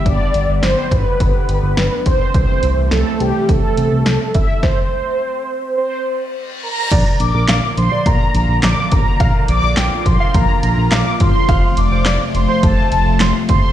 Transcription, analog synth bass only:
\new Staff \with { instrumentName = "Analog synth bass" } { \clef bass \time 4/4 \key bes \lydian \tempo 4 = 105 g,,16 r16 g,,16 g,,16 g,,16 r16 g,,16 r16 g,,16 r16 g,,16 g,,16 g,,16 r16 b,,16 r16 | c,16 r16 c,16 c,16 c,16 r16 c,16 r16 c,16 r16 c,16 c,16 c,16 r16 g,,16 r16 | r1 | bes,,16 r16 bes,,16 bes,,16 bes,,16 r16 bes,,16 r16 bes,,16 r16 bes,,16 bes,,16 bes,,16 r16 a,,16 r16 |
bes,,16 r16 bes,,16 bes,,16 bes,,16 r16 bes,,16 r16 bes,,16 r16 bes,,16 bes,,16 bes,,16 r16 g,,16 r16 | f,,16 r16 f,,16 f,,16 f,,16 r16 f,,16 r16 f,,16 r16 f,,16 f,,16 f,,16 r16 g,,16 r16 | }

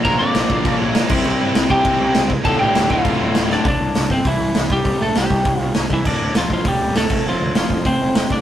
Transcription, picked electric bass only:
\new Staff \with { instrumentName = "Picked electric bass" } { \clef bass \time 4/4 \key c \mixolydian \tempo 4 = 200 bes,,8 f,8 bes,,8 bes,,8 bes,,8 bes,,8 bes,8 c,8 | c,8 g,8 c,8 c,8 c,8 c,8 cis,4 | d,,8 a,,8 d,,8 d,,8 d,,8 d,,8 d,,4 | c,8 c,8 c,8 g,,8 c,8 c,8 c,8 c,8 |
c,8 bes,,8 c,8 c,8 c,8 c,8 c,8 c,8 | d,,8 d,,8 d,,8 a,,8 d,,8 d,,8 d,,8 f,,8 | f,,8 d,8 f,,8 f,,8 f,,8 f,,8 f,,8 f,,8 | }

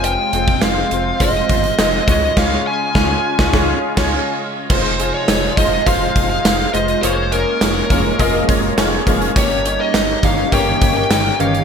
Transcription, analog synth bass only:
\new Staff \with { instrumentName = "Analog synth bass" } { \clef bass \time 4/4 \key f \minor \tempo 4 = 103 f,,8 f,,8 f,,8 f,,8 f,,8 g,,8 f,,8 des,8 | des,8 r8 des,8 r16 des,16 des,8 r16 des,8 r8. | f,,4 f,,8 f,,8 f,,8 f,,8 f,,8 f,,8 | f,,4 f,,8 f,,8 f,,8 f,,8 f,,8 f,,8 |
g,,4 g,,8 g,,8 g,,8 g,,8 g,,8 g,,8 | }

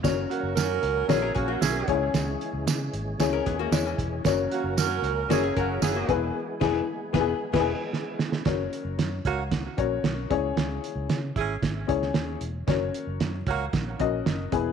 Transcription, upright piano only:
<<
  \new Staff \with { instrumentName = "Upright piano" } { \time 4/4 \key fis \mixolydian \tempo 4 = 114 <cis' fis' ais' cis''>4~ <cis' fis' ais' cis''>16 r8. <cis' fis' ais' cis''>4~ <cis' fis' ais' cis''>16 r16 <cis' e' gis' cis''>8~ | <cis' e' gis' cis''>4 r4 <cis' e' gis' cis''>4~ <cis' e' gis' cis''>16 r8. | <cis' fis' ais' cis''>4~ <cis' fis' ais' cis''>16 r8. <cis' fis' ais' cis''>4~ <cis' fis' ais' cis''>16 r16 <b e' gis' b'>8 | r8 <e b e' gis' b'>8 r8 <b e' gis' b'>8 r16 <b e' gis' b'>8 r4 r16 |
<cis' fis' ais' cis''>4~ <cis' fis' ais' cis''>16 r4 r16 <cis' fis' ais' cis''>4 <cis' e' gis' cis''>8~ | <cis' e' gis' cis''>4 r4. <cis' e' gis' cis''>4 r8 | <cis' fis' ais' cis''>4~ <cis' fis' ais' cis''>16 r4 r16 <cis' fis' ais' dis''>4 <b e' gis' b'>8 | }
  \new Staff \with { instrumentName = "Upright piano" } { \clef bass \time 4/4 \key fis \mixolydian r2. r8 cis8~ | cis4 r2 cis''4 | r2. r8 e8 | r1 |
r2. r8 cis8~ | cis4 r2. | r2. r8 e8 | }
>>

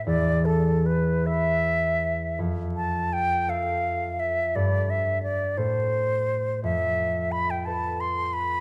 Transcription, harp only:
\new Staff \with { instrumentName = "Harp" } { \time 6/8 \key f \lydian \tempo 4. = 57 <e, b' d'' e''>4. <b' e''>4. | f,4. <a' e''>4. | <g, a' d''>4. <a, a'>4. | f,4. <a' b'>4. | }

